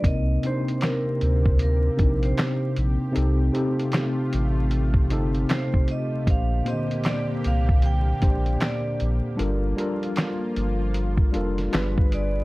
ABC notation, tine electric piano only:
X:1
M:4/4
L:1/8
Q:"Swing 16ths" 1/4=77
K:Cdor
V:1 name="Tine electric piano"
[C,B,CEB] [C,CDEc]3 z [C,CDEG]2 z | [C,CEGA] [C,CEGA]3 z [C,CEGA]2 z | [B,,B,DGc] [B,,D,B,CGc]3 z [B,,B,DGcd]2 z | [G,DFAB] [G,DFAB]3 z [G,DFAB] [G,DF_A=B]2 |]